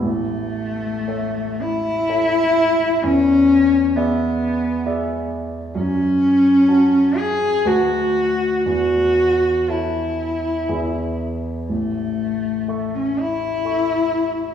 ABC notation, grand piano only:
X:1
M:3/4
L:1/8
Q:1/4=62
K:A
V:1 name="Grand piano"
A,,,2 [Ace]2 [Ace]2 | E,,2 [Gde]2 [Gde]2 | F,,2 [Fca]2 [D,,FBa]2 | E,,2 [Aca]2 [E,,Geb]2 |
A,,,2 [Aec']2 [Aec']2 |]